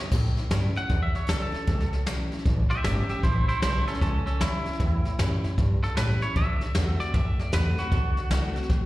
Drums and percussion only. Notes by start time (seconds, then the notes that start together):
0.12 kick, snare, crash
0.37 snare
0.51 snare, hi-hat pedal
0.76 snare
0.90 kick, snare
1.15 snare
1.29 snare, hi-hat pedal
1.54 snare
1.67 kick, snare
1.80 snare
1.93 snare
2.07 snare, hi-hat pedal
2.32 snare
2.39 snare
2.45 kick, snare
2.71 snare
2.84 snare, hi-hat pedal
3.09 snare
3.23 kick, snare
3.49 snare
3.62 snare, hi-hat pedal
3.87 snare
3.95 snare
4.01 kick, snare
4.27 snare
4.41 snare, hi-hat pedal
4.66 snare
4.73 snare
4.80 kick, snare
5.05 snare
5.19 snare, hi-hat pedal
5.44 snare
5.58 kick, snare
5.83 snare
5.97 snare, hi-hat pedal
6.22 snare
6.36 kick, snare
6.61 snare
6.75 snare, hi-hat pedal
7.00 snare
7.14 kick, snare
7.39 snare
7.53 snare, hi-hat pedal
7.78 snare
7.92 kick, snare
8.17 snare
8.31 snare, hi-hat pedal
8.56 snare
8.63 snare
8.70 kick, snare